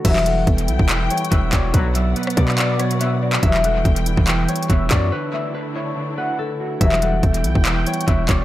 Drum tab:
CC |x-----------------------------------------------|------------------------------------------------|------------------------------------------------|------------------------------------------------|
HH |x-----x-----x--x--x-----x-----x-x-x-x-----x-----|x-----x-----x-x-x-x-----x-----x--x--x-----------|x-----x-----x--x--x-----x-----x-x-x-x-----x-----|------------------------------------------------|
CP |---x--------------------x-----------------x-----|---------------------x--x--------------------x--|---x--------------------x-----------------x-----|------------------------------------------------|
SD |------------------------------------------------|---------------r--------------r-----------------|------------------------------------------------|------------------------------------------------|
BD |o-----------o--------o--------------o-----o-----|o-----------------o-----------------------------|o-----------o--------o--------------o-----o-----|------------------------------------------------|

CC |------------------------------------------------|
HH |x-----x-----x--x--x-----x-----x-x-x-x-----x-----|
CP |---x--------------------x-----------------x-----|
SD |------------------------------------------------|
BD |o-----------o--------o--------------o-----o-----|